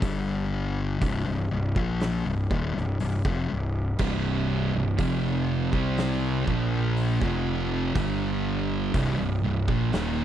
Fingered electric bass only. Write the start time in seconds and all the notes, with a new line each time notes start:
0.02 G1
1.01 C1
1.27 C1
1.51 C1
1.76 A#1
2.26 C1
2.50 D#1
2.76 C1
3.01 C1
3.25 F1
3.51 C1
3.99 C1
4.74 C1
4.99 F1
5.73 C2
6.47 A#1
7.21 F1
7.95 G1
8.94 C1
9.19 C1
9.44 C1
9.68 A#1
9.93 D#1